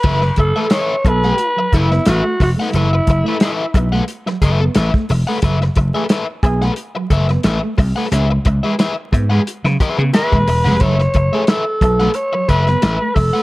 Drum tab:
CC |x---------------|----------------|----------------|----------------|
HH |--x-x-x-x-x-x-o-|x-x-x-x-x-x-x-o-|x-x-x-x-x-x-x-o-|x-x-x-x-x-x-x-o-|
SD |-o--o--o---oo-o-|----o----o--oo--|-o--o--o---oo-o-|----o----o--oo-o|
BD |o-o---o---o---o-|--o---o---o--o--|o-o---o---o---o-|--o---o---o--o--|

CC |----------------|
HH |x-x-x-x-x-x-x-o-|
SD |-o--o--o---oo-o-|
BD |o-o---o---o---o-|